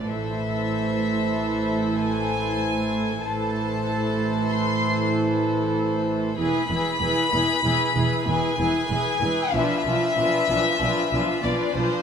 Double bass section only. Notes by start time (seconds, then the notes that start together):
0.07 A1
3.22 A1
6.38 E1
6.70 E1
7.01 E1
7.34 E1
7.64 E1
7.96 E1
8.28 E1
8.59 E1
8.90 E1
9.22 E1
9.53 B1
9.86 B1
10.17 B1
10.49 B1
10.80 B1
11.12 B1
11.44 B1
11.75 B1